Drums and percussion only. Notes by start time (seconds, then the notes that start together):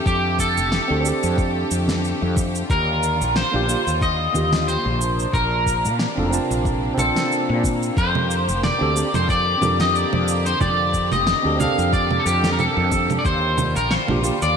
0.06 kick, shaker
0.39 kick, shaker
0.57 shaker
0.72 snare, shaker
1.05 shaker
1.23 shaker
1.38 kick, shaker
1.71 shaker
1.88 snare, high conga, shaker
2.04 shaker
2.36 kick, high conga, shaker
2.55 shaker
2.70 kick, shaker
3.03 shaker
3.22 shaker
3.36 snare, shaker
3.69 shaker
3.87 shaker
4.02 kick, shaker
4.34 high conga, shaker
4.52 snare, high conga, shaker
4.68 shaker
5.01 shaker
5.19 shaker
5.33 kick, shaker
5.66 kick, shaker
5.85 shaker
5.99 snare, shaker
6.33 shaker
6.51 shaker
6.65 kick, shaker
6.98 low conga, shaker
7.16 snare, high conga, shaker
7.32 shaker
7.64 kick, high conga, shaker
7.83 shaker
7.97 kick, shaker
8.15 low conga
8.31 shaker
8.49 shaker
8.63 snare, low conga, shaker
8.96 shaker
9.14 low conga, shaker
9.29 kick, shaker
9.62 high conga, low conga, shaker
9.79 snare, high conga, shaker
9.95 shaker
10.13 low conga
10.28 shaker
10.46 shaker
10.61 kick, low conga, shaker
10.94 kick, shaker
11.12 low conga, shaker
11.27 snare, shaker
11.60 low conga, shaker
11.79 shaker
11.93 kick, shaker
12.11 low conga
12.26 shaker
12.44 snare, high conga, shaker
12.59 low conga, shaker
12.91 kick, high conga, shaker
13.10 low conga, shaker
13.25 kick, shaker
13.58 low conga, shaker
13.76 shaker
13.91 snare, shaker
14.08 low conga
14.24 shaker
14.42 shaker